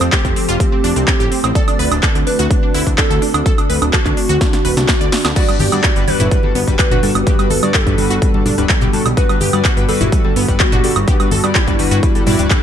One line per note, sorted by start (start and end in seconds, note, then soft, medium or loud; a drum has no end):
0.00 0.10 F2 medium
0.00 1.52 F3 medium
0.00 5.32 A3 medium
0.00 5.32 C4 medium
0.00 0.07 C4 medium
0.00 1.53 A4 medium
0.00 closed hi-hat medium
0.00 high woodblock medium
0.12 1.46 G4 loud
0.12 0.19 G4 loud
0.12 kick loud
0.12 clap loud
0.12 closed hi-hat medium
0.25 0.34 F1 medium
0.25 0.31 C4 medium
0.25 kick medium
0.25 closed hi-hat soft
0.36 0.43 C4 medium
0.36 open hi-hat medium
0.49 0.58 F1 medium
0.49 0.55 F4 loud
0.49 closed hi-hat medium
0.60 0.67 C4 medium
0.60 kick loud
0.60 closed hi-hat medium
0.72 0.79 C4 medium
0.84 0.94 F2 medium
0.84 0.90 D4 medium
0.84 open hi-hat loud
0.96 1.05 C2 medium
0.96 1.02 C4 medium
0.96 closed hi-hat medium
1.08 1.14 C4 medium
1.08 kick loud
1.08 clap loud
1.08 closed hi-hat medium
1.20 1.29 A1 medium
1.20 1.26 G4 loud
1.20 closed hi-hat soft
1.31 1.38 C4 medium
1.31 open hi-hat medium
1.44 1.53 A1 medium
1.44 1.50 C4 medium
1.44 closed hi-hat medium
1.44 high woodblock medium
1.55 12.63 D3 medium
1.55 12.63 F#4 medium
1.55 1.62 A4 loud
1.55 2.18 D5 loud
1.55 kick loud
1.55 closed hi-hat medium
1.68 1.74 D4 medium
1.68 closed hi-hat soft
1.68 high woodblock medium
1.79 1.89 D2 medium
1.79 1.86 B4 loud
1.79 open hi-hat loud
1.91 2.00 D1 medium
1.91 1.98 D4 medium
1.91 closed hi-hat medium
1.91 high woodblock medium
2.03 2.10 A4 medium
2.03 kick loud
2.03 clap loud
2.03 closed hi-hat medium
2.15 2.24 D2 medium
2.15 2.21 D4 medium
2.15 closed hi-hat soft
2.27 2.33 D4 medium
2.27 2.89 B4 loud
2.27 open hi-hat medium
2.39 2.48 D2 medium
2.39 2.45 F#4 loud
2.39 closed hi-hat medium
2.51 2.57 D4 medium
2.51 kick loud
2.51 closed hi-hat medium
2.63 2.69 D4 medium
2.74 2.84 D2 loud
2.74 2.81 E4 loud
2.74 open hi-hat loud
2.87 2.96 D2 medium
2.87 2.93 D4 medium
2.87 kick medium
2.87 closed hi-hat medium
2.98 3.05 D4 medium
2.98 3.84 A4 loud
2.98 kick loud
2.98 clap loud
2.98 closed hi-hat medium
3.10 3.20 D2 medium
3.10 3.17 A4 medium
3.10 closed hi-hat soft
3.22 3.29 D4 medium
3.22 open hi-hat medium
3.34 3.43 D2 medium
3.34 3.40 D4 medium
3.34 closed hi-hat medium
3.34 high woodblock medium
3.46 3.52 A4 loud
3.46 kick loud
3.46 closed hi-hat medium
3.58 3.64 D4 medium
3.58 closed hi-hat soft
3.58 high woodblock medium
3.70 3.79 D2 loud
3.70 3.76 B4 medium
3.70 open hi-hat loud
3.82 3.91 D1 medium
3.82 3.88 D4 medium
3.82 closed hi-hat medium
3.82 high woodblock medium
3.93 5.27 F#4 loud
3.93 4.00 A4 loud
3.93 kick loud
3.93 clap loud
3.93 closed hi-hat medium
4.06 4.15 D2 medium
4.06 4.12 D4 medium
4.06 kick medium
4.06 clap soft
4.06 closed hi-hat soft
4.17 4.24 D4 medium
4.17 open hi-hat medium
4.29 4.39 D2 medium
4.29 4.36 F#4 loud
4.29 closed hi-hat medium
4.41 4.48 D4 medium
4.41 kick loud
4.41 snare medium
4.41 closed hi-hat medium
4.53 4.59 D4 medium
4.53 snare medium
4.53 closed hi-hat soft
4.65 4.74 D1 medium
4.65 4.71 B4 medium
4.65 open hi-hat loud
4.77 4.86 C2 medium
4.77 4.83 D4 medium
4.77 snare medium
4.77 closed hi-hat medium
4.88 4.95 D4 medium
4.88 kick loud
4.88 snare medium
4.88 clap loud
4.88 closed hi-hat medium
5.01 5.10 D2 medium
5.01 5.07 D5 medium
5.01 closed hi-hat soft
5.12 5.19 D4 medium
5.12 snare loud
5.12 open hi-hat medium
5.25 5.34 D2 medium
5.25 5.31 D4 medium
5.25 snare medium
5.25 closed hi-hat medium
5.25 high woodblock medium
5.36 5.46 G2 medium
5.36 5.46 G3 medium
5.36 12.63 G3 medium
5.36 12.63 B3 medium
5.36 5.46 D4 medium
5.36 5.43 F#4 loud
5.36 5.46 F#4 medium
5.36 5.46 B4 medium
5.36 6.09 D5 loud
5.36 kick loud
5.36 closed hi-hat medium
5.36 crash medium
5.48 5.57 G2 medium
5.48 5.55 G3 medium
5.48 5.57 G3 medium
5.48 5.57 D4 medium
5.48 5.57 F#4 medium
5.48 5.57 B4 loud
5.48 closed hi-hat soft
5.48 high woodblock medium
5.59 5.70 G1 loud
5.59 5.67 G4 medium
5.59 open hi-hat loud
5.59 high conga medium
5.72 5.93 G2 medium
5.72 5.81 G2 medium
5.72 5.93 G3 medium
5.72 5.79 G3 medium
5.72 5.93 D4 medium
5.72 5.93 F#4 medium
5.72 5.93 D5 medium
5.72 closed hi-hat medium
5.72 high woodblock medium
5.84 5.90 F#4 medium
5.84 kick loud
5.84 clap loud
5.84 closed hi-hat medium
5.96 6.05 G1 medium
5.96 6.05 G2 loud
5.96 6.02 G3 medium
5.96 6.05 G3 medium
5.96 6.05 D4 medium
5.96 6.05 F#4 medium
5.96 6.05 B4 loud
5.96 closed hi-hat soft
6.07 6.29 G2 medium
6.07 6.29 G3 medium
6.07 6.14 G3 medium
6.07 6.29 D4 medium
6.07 6.29 F#4 medium
6.07 6.70 B4 loud
6.07 6.29 B4 loud
6.07 open hi-hat medium
6.07 high conga medium
6.20 6.29 G1 medium
6.20 6.26 E4 loud
6.20 closed hi-hat medium
6.20 low conga medium
6.31 6.41 G2 medium
6.31 6.38 G3 medium
6.31 6.41 G3 medium
6.31 6.41 D4 medium
6.31 6.41 F#4 medium
6.31 6.41 B4 medium
6.31 kick loud
6.31 closed hi-hat medium
6.43 6.52 G2 medium
6.43 6.52 G3 medium
6.43 6.50 G3 medium
6.43 6.52 D4 medium
6.43 6.52 F#4 medium
6.43 6.52 A4 medium
6.43 high conga medium
6.55 6.65 G1 medium
6.55 6.62 B3 loud
6.55 open hi-hat loud
6.68 6.77 G1 medium
6.68 6.76 G2 loud
6.68 6.76 G3 medium
6.68 6.74 G3 medium
6.68 6.76 D4 medium
6.68 6.76 F#4 medium
6.68 6.76 B4 loud
6.68 kick medium
6.68 closed hi-hat medium
6.79 6.86 G3 medium
6.79 7.76 B4 loud
6.79 kick loud
6.79 clap loud
6.79 closed hi-hat medium
6.91 7.00 G1 medium
6.91 7.00 G2 medium
6.91 7.00 G3 medium
6.91 7.00 D4 medium
6.91 7.00 F#4 medium
6.91 6.98 F#4 medium
6.91 7.00 B4 medium
6.91 closed hi-hat soft
6.91 low conga medium
7.03 7.12 G2 medium
7.03 7.09 G3 medium
7.03 7.12 G3 medium
7.03 7.12 D4 medium
7.03 7.12 F#4 medium
7.03 7.12 A4 medium
7.03 open hi-hat medium
7.15 7.24 G1 medium
7.15 7.21 G3 medium
7.15 closed hi-hat medium
7.15 high woodblock medium
7.27 7.36 G2 medium
7.27 7.36 G3 medium
7.27 7.36 D4 medium
7.27 7.36 F#4 medium
7.27 7.33 G4 loud
7.27 7.36 B4 medium
7.27 kick loud
7.27 closed hi-hat medium
7.39 7.47 G2 medium
7.39 7.45 G3 medium
7.39 7.47 G3 medium
7.39 7.47 D4 medium
7.39 7.47 F#4 medium
7.39 7.47 B4 medium
7.39 closed hi-hat soft
7.39 high woodblock medium
7.50 7.60 G1 medium
7.50 7.57 A4 medium
7.50 open hi-hat loud
7.50 high conga medium
7.63 7.72 G2 medium
7.63 7.84 G2 medium
7.63 7.84 G3 medium
7.63 7.69 G3 medium
7.63 7.84 D4 medium
7.63 7.84 F#4 medium
7.63 7.84 D5 medium
7.63 closed hi-hat medium
7.63 high woodblock medium
7.74 7.81 G4 medium
7.74 9.08 A4 loud
7.74 kick loud
7.74 clap loud
7.74 closed hi-hat medium
7.87 7.96 G1 medium
7.87 7.95 G2 medium
7.87 7.93 G3 medium
7.87 7.95 G3 medium
7.87 7.95 D4 medium
7.87 7.95 F#4 medium
7.87 7.95 B4 loud
7.87 kick medium
7.87 closed hi-hat soft
7.98 8.19 G2 medium
7.98 8.05 G3 medium
7.98 8.19 G3 medium
7.98 8.19 D4 medium
7.98 8.19 F#4 medium
7.98 8.19 B4 loud
7.98 open hi-hat loud
7.98 high conga medium
8.10 8.20 G1 medium
8.10 8.17 F#4 loud
8.10 closed hi-hat medium
8.22 8.31 G2 medium
8.22 8.28 G3 medium
8.22 8.31 G3 medium
8.22 8.31 D4 medium
8.22 8.31 F#4 medium
8.22 8.31 B4 medium
8.22 kick loud
8.22 closed hi-hat medium
8.34 8.43 G2 medium
8.34 8.40 G3 medium
8.34 8.43 G3 medium
8.34 8.43 D4 medium
8.34 8.43 F#4 medium
8.34 8.43 A4 medium
8.34 high conga medium
8.46 8.55 G2 loud
8.46 8.52 D4 medium
8.46 open hi-hat loud
8.46 low conga loud
8.58 8.67 D1 medium
8.58 8.66 G2 loud
8.58 8.64 G3 medium
8.58 8.66 G3 medium
8.58 8.66 D4 medium
8.58 8.66 F#4 medium
8.58 8.66 B4 loud
8.58 closed hi-hat medium
8.69 8.76 G3 medium
8.69 kick loud
8.69 clap loud
8.69 closed hi-hat medium
8.81 8.91 B1 medium
8.81 8.90 G2 medium
8.81 8.90 G3 medium
8.81 8.90 D4 medium
8.81 8.90 F#4 medium
8.81 8.88 G4 medium
8.81 8.90 B4 medium
8.81 closed hi-hat soft
8.81 low conga medium
8.93 9.02 G2 medium
8.93 9.00 G3 medium
8.93 9.02 G3 medium
8.93 9.02 D4 medium
8.93 9.02 F#4 medium
8.93 9.02 A4 loud
8.93 open hi-hat medium
9.06 9.15 B1 medium
9.06 9.12 G3 medium
9.06 closed hi-hat medium
9.06 high woodblock medium
9.17 9.27 G2 medium
9.17 9.27 G3 medium
9.17 9.27 D4 medium
9.17 9.24 F#4 loud
9.17 9.27 F#4 medium
9.17 9.79 B4 loud
9.17 9.27 B4 loud
9.17 kick loud
9.17 closed hi-hat medium
9.29 9.38 G2 medium
9.29 9.36 G3 medium
9.29 9.38 G3 medium
9.29 9.38 D4 medium
9.29 9.38 F#4 medium
9.29 9.38 B4 medium
9.29 closed hi-hat soft
9.29 high woodblock medium
9.40 9.51 G1 medium
9.40 9.48 G4 loud
9.40 open hi-hat loud
9.40 high conga medium
9.53 9.62 G2 medium
9.53 9.74 G2 medium
9.53 9.59 G3 medium
9.53 9.74 G3 medium
9.53 9.74 D4 medium
9.53 9.74 F#4 medium
9.53 9.74 D5 medium
9.53 closed hi-hat medium
9.53 high woodblock medium
9.65 9.71 F#4 loud
9.65 kick loud
9.65 clap loud
9.65 closed hi-hat medium
9.77 9.86 G1 medium
9.77 9.85 G2 medium
9.77 9.83 G3 medium
9.77 9.85 G3 medium
9.77 9.85 D4 medium
9.77 9.85 F#4 medium
9.77 9.85 B4 loud
9.77 closed hi-hat soft
9.89 10.10 G2 medium
9.89 9.95 G3 medium
9.89 10.10 G3 medium
9.89 10.10 D4 medium
9.89 10.10 F#4 medium
9.89 10.51 A4 loud
9.89 10.10 B4 loud
9.89 open hi-hat medium
9.89 high conga medium
10.01 10.10 G1 medium
10.01 10.07 E4 medium
10.01 closed hi-hat medium
10.01 low conga medium
10.12 10.22 G2 medium
10.12 10.19 G3 medium
10.12 10.22 G3 medium
10.12 10.22 D4 medium
10.12 10.22 F#4 medium
10.12 10.22 B4 medium
10.12 kick loud
10.12 closed hi-hat medium
10.24 10.33 G2 medium
10.24 10.33 G3 medium
10.24 10.31 G3 medium
10.24 10.33 D4 medium
10.24 10.33 F#4 medium
10.24 10.33 A4 medium
10.24 high conga medium
10.36 10.46 G1 medium
10.36 10.43 B3 loud
10.36 open hi-hat loud
10.48 10.58 G1 medium
10.48 10.57 G2 medium
10.48 10.55 G3 medium
10.48 10.57 G3 medium
10.48 10.57 D4 medium
10.48 10.57 F#4 loud
10.48 10.57 B4 loud
10.48 kick medium
10.48 closed hi-hat medium
10.60 10.67 G3 medium
10.60 11.57 F#4 loud
10.60 kick loud
10.60 clap loud
10.60 closed hi-hat medium
10.72 10.81 G1 medium
10.72 10.81 G2 medium
10.72 10.81 G3 medium
10.72 10.81 D4 medium
10.72 10.78 F#4 medium
10.72 10.81 F#4 medium
10.72 10.81 B4 medium
10.72 closed hi-hat soft
10.72 low conga medium
10.84 10.93 G2 medium
10.84 10.90 G3 medium
10.84 10.93 G3 medium
10.84 10.93 D4 medium
10.84 10.93 F#4 medium
10.84 10.93 A4 medium
10.84 open hi-hat loud
10.96 11.05 G1 medium
10.96 11.02 G3 medium
10.96 closed hi-hat medium
10.96 high woodblock medium
11.08 11.17 G2 medium
11.08 11.17 G3 medium
11.08 11.17 D4 medium
11.08 11.17 F#4 medium
11.08 11.14 G4 loud
11.08 11.17 B4 medium
11.08 kick loud
11.08 closed hi-hat medium
11.20 11.28 G2 medium
11.20 11.26 G3 medium
11.20 11.28 G3 medium
11.20 11.28 D4 medium
11.20 11.28 F#4 medium
11.20 11.28 B4 loud
11.20 closed hi-hat soft
11.20 high woodblock medium
11.31 11.41 G1 loud
11.31 11.38 A4 medium
11.31 open hi-hat loud
11.31 high conga medium
11.44 11.65 G2 medium
11.44 11.53 G2 medium
11.44 11.50 G3 medium
11.44 11.65 G3 medium
11.44 11.65 D4 medium
11.44 11.65 F#4 medium
11.44 11.65 D5 medium
11.44 closed hi-hat medium
11.44 high woodblock medium
11.55 12.63 E4 loud
11.55 11.62 G4 medium
11.55 kick loud
11.55 clap loud
11.55 closed hi-hat medium
11.68 11.77 G1 medium
11.68 11.76 G2 medium
11.68 11.74 G3 medium
11.68 11.76 G3 medium
11.68 11.76 D4 medium
11.68 11.76 F#4 medium
11.68 11.76 B4 loud
11.68 kick medium
11.68 closed hi-hat soft
11.79 12.00 G2 medium
11.79 11.86 G3 medium
11.79 12.00 G3 medium
11.79 12.00 D4 medium
11.79 12.00 F#4 medium
11.79 12.00 B4 loud
11.79 open hi-hat loud
11.79 high conga medium
11.91 12.01 G1 medium
11.91 11.98 F#4 loud
11.91 closed hi-hat medium
12.03 12.12 G3 medium
12.03 12.10 G3 medium
12.03 12.12 D4 medium
12.03 12.12 F#4 medium
12.03 12.12 B4 medium
12.03 kick loud
12.03 closed hi-hat medium
12.15 12.24 G2 medium
12.15 12.24 G3 medium
12.15 12.21 G3 medium
12.15 12.24 D4 medium
12.15 12.24 F#4 medium
12.15 12.24 A4 medium
12.15 closed hi-hat soft
12.15 high conga medium
12.26 12.36 G2 medium
12.26 12.48 G2 medium
12.26 12.48 G3 medium
12.26 12.48 D4 medium
12.26 12.33 E4 medium
12.26 12.48 F#4 medium
12.26 12.48 D5 loud
12.26 open hi-hat loud
12.26 low conga medium
12.39 12.48 D1 medium
12.39 12.45 G3 medium
12.39 closed hi-hat medium
12.51 12.63 G2 loud
12.51 12.63 G3 medium
12.51 12.57 G3 medium
12.51 12.63 D4 medium
12.51 12.63 F#4 medium
12.51 12.63 A4 loud
12.51 kick loud
12.51 clap loud
12.51 closed hi-hat medium